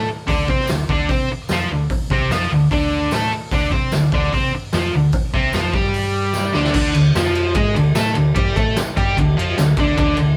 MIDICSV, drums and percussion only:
0, 0, Header, 1, 2, 480
1, 0, Start_track
1, 0, Key_signature, -1, "minor"
1, 0, Tempo, 404040
1, 326, Time_signature, 4, 2, 24, 8
1, 12318, End_track
2, 0, Start_track
2, 0, Title_t, "Drums"
2, 334, Note_on_c, 9, 36, 107
2, 342, Note_on_c, 9, 46, 61
2, 453, Note_off_c, 9, 36, 0
2, 461, Note_off_c, 9, 46, 0
2, 575, Note_on_c, 9, 36, 102
2, 693, Note_off_c, 9, 36, 0
2, 709, Note_on_c, 9, 38, 36
2, 800, Note_on_c, 9, 54, 85
2, 822, Note_off_c, 9, 38, 0
2, 822, Note_on_c, 9, 38, 106
2, 822, Note_on_c, 9, 46, 55
2, 918, Note_off_c, 9, 54, 0
2, 941, Note_off_c, 9, 38, 0
2, 941, Note_off_c, 9, 46, 0
2, 1059, Note_on_c, 9, 36, 98
2, 1178, Note_off_c, 9, 36, 0
2, 1296, Note_on_c, 9, 36, 105
2, 1301, Note_on_c, 9, 46, 48
2, 1415, Note_off_c, 9, 36, 0
2, 1420, Note_off_c, 9, 46, 0
2, 1766, Note_on_c, 9, 54, 91
2, 1771, Note_on_c, 9, 38, 108
2, 1771, Note_on_c, 9, 46, 49
2, 1885, Note_off_c, 9, 54, 0
2, 1890, Note_off_c, 9, 38, 0
2, 1890, Note_off_c, 9, 46, 0
2, 2257, Note_on_c, 9, 36, 104
2, 2260, Note_on_c, 9, 46, 59
2, 2376, Note_off_c, 9, 36, 0
2, 2379, Note_off_c, 9, 46, 0
2, 2498, Note_on_c, 9, 36, 99
2, 2617, Note_off_c, 9, 36, 0
2, 2744, Note_on_c, 9, 38, 100
2, 2744, Note_on_c, 9, 46, 56
2, 2753, Note_on_c, 9, 54, 79
2, 2863, Note_off_c, 9, 38, 0
2, 2863, Note_off_c, 9, 46, 0
2, 2872, Note_off_c, 9, 54, 0
2, 3219, Note_on_c, 9, 36, 101
2, 3224, Note_on_c, 9, 46, 56
2, 3338, Note_off_c, 9, 36, 0
2, 3343, Note_off_c, 9, 46, 0
2, 3696, Note_on_c, 9, 54, 81
2, 3706, Note_on_c, 9, 38, 106
2, 3706, Note_on_c, 9, 46, 59
2, 3815, Note_off_c, 9, 54, 0
2, 3825, Note_off_c, 9, 38, 0
2, 3825, Note_off_c, 9, 46, 0
2, 4174, Note_on_c, 9, 46, 58
2, 4176, Note_on_c, 9, 36, 107
2, 4293, Note_off_c, 9, 46, 0
2, 4295, Note_off_c, 9, 36, 0
2, 4420, Note_on_c, 9, 36, 98
2, 4539, Note_off_c, 9, 36, 0
2, 4654, Note_on_c, 9, 54, 84
2, 4659, Note_on_c, 9, 38, 109
2, 4659, Note_on_c, 9, 46, 57
2, 4773, Note_off_c, 9, 54, 0
2, 4778, Note_off_c, 9, 38, 0
2, 4778, Note_off_c, 9, 46, 0
2, 4897, Note_on_c, 9, 36, 110
2, 5016, Note_off_c, 9, 36, 0
2, 5022, Note_on_c, 9, 38, 31
2, 5140, Note_off_c, 9, 38, 0
2, 5140, Note_on_c, 9, 36, 100
2, 5145, Note_on_c, 9, 46, 56
2, 5258, Note_off_c, 9, 36, 0
2, 5264, Note_off_c, 9, 46, 0
2, 5615, Note_on_c, 9, 38, 106
2, 5615, Note_on_c, 9, 46, 50
2, 5617, Note_on_c, 9, 54, 95
2, 5734, Note_off_c, 9, 38, 0
2, 5734, Note_off_c, 9, 46, 0
2, 5736, Note_off_c, 9, 54, 0
2, 6087, Note_on_c, 9, 46, 55
2, 6096, Note_on_c, 9, 36, 108
2, 6206, Note_off_c, 9, 46, 0
2, 6215, Note_off_c, 9, 36, 0
2, 6341, Note_on_c, 9, 36, 97
2, 6459, Note_off_c, 9, 36, 0
2, 6568, Note_on_c, 9, 54, 94
2, 6585, Note_on_c, 9, 38, 114
2, 6585, Note_on_c, 9, 46, 52
2, 6687, Note_off_c, 9, 54, 0
2, 6704, Note_off_c, 9, 38, 0
2, 6704, Note_off_c, 9, 46, 0
2, 6814, Note_on_c, 9, 36, 105
2, 6932, Note_on_c, 9, 38, 32
2, 6933, Note_off_c, 9, 36, 0
2, 7051, Note_off_c, 9, 38, 0
2, 7053, Note_on_c, 9, 46, 51
2, 7172, Note_off_c, 9, 46, 0
2, 7524, Note_on_c, 9, 38, 60
2, 7528, Note_on_c, 9, 54, 99
2, 7643, Note_off_c, 9, 38, 0
2, 7646, Note_off_c, 9, 54, 0
2, 7765, Note_on_c, 9, 38, 86
2, 7884, Note_off_c, 9, 38, 0
2, 7888, Note_on_c, 9, 38, 82
2, 8005, Note_on_c, 9, 49, 127
2, 8007, Note_off_c, 9, 38, 0
2, 8014, Note_on_c, 9, 36, 109
2, 8124, Note_off_c, 9, 49, 0
2, 8132, Note_off_c, 9, 36, 0
2, 8251, Note_on_c, 9, 51, 75
2, 8370, Note_off_c, 9, 51, 0
2, 8499, Note_on_c, 9, 38, 109
2, 8499, Note_on_c, 9, 51, 93
2, 8500, Note_on_c, 9, 54, 100
2, 8618, Note_off_c, 9, 38, 0
2, 8618, Note_off_c, 9, 51, 0
2, 8619, Note_off_c, 9, 54, 0
2, 8622, Note_on_c, 9, 38, 34
2, 8734, Note_on_c, 9, 51, 75
2, 8741, Note_off_c, 9, 38, 0
2, 8853, Note_off_c, 9, 51, 0
2, 8965, Note_on_c, 9, 51, 103
2, 8971, Note_on_c, 9, 36, 107
2, 9083, Note_off_c, 9, 51, 0
2, 9090, Note_off_c, 9, 36, 0
2, 9220, Note_on_c, 9, 51, 68
2, 9339, Note_off_c, 9, 51, 0
2, 9446, Note_on_c, 9, 54, 106
2, 9447, Note_on_c, 9, 38, 113
2, 9447, Note_on_c, 9, 51, 100
2, 9564, Note_off_c, 9, 54, 0
2, 9566, Note_off_c, 9, 38, 0
2, 9566, Note_off_c, 9, 51, 0
2, 9683, Note_on_c, 9, 51, 70
2, 9801, Note_off_c, 9, 51, 0
2, 9926, Note_on_c, 9, 51, 105
2, 9932, Note_on_c, 9, 36, 115
2, 10044, Note_off_c, 9, 51, 0
2, 10051, Note_off_c, 9, 36, 0
2, 10172, Note_on_c, 9, 36, 102
2, 10177, Note_on_c, 9, 51, 75
2, 10291, Note_off_c, 9, 36, 0
2, 10296, Note_off_c, 9, 51, 0
2, 10413, Note_on_c, 9, 38, 117
2, 10413, Note_on_c, 9, 51, 106
2, 10417, Note_on_c, 9, 54, 100
2, 10532, Note_off_c, 9, 38, 0
2, 10532, Note_off_c, 9, 51, 0
2, 10536, Note_off_c, 9, 54, 0
2, 10657, Note_on_c, 9, 36, 101
2, 10661, Note_on_c, 9, 51, 72
2, 10776, Note_off_c, 9, 36, 0
2, 10780, Note_off_c, 9, 51, 0
2, 10897, Note_on_c, 9, 36, 90
2, 10903, Note_on_c, 9, 51, 100
2, 11016, Note_off_c, 9, 36, 0
2, 11022, Note_off_c, 9, 51, 0
2, 11156, Note_on_c, 9, 51, 83
2, 11275, Note_off_c, 9, 51, 0
2, 11378, Note_on_c, 9, 38, 106
2, 11378, Note_on_c, 9, 51, 107
2, 11392, Note_on_c, 9, 54, 103
2, 11497, Note_off_c, 9, 38, 0
2, 11497, Note_off_c, 9, 51, 0
2, 11510, Note_off_c, 9, 54, 0
2, 11604, Note_on_c, 9, 51, 79
2, 11609, Note_on_c, 9, 36, 101
2, 11722, Note_off_c, 9, 51, 0
2, 11728, Note_off_c, 9, 36, 0
2, 11852, Note_on_c, 9, 36, 117
2, 11852, Note_on_c, 9, 51, 115
2, 11971, Note_off_c, 9, 36, 0
2, 11971, Note_off_c, 9, 51, 0
2, 12078, Note_on_c, 9, 51, 73
2, 12197, Note_off_c, 9, 51, 0
2, 12318, End_track
0, 0, End_of_file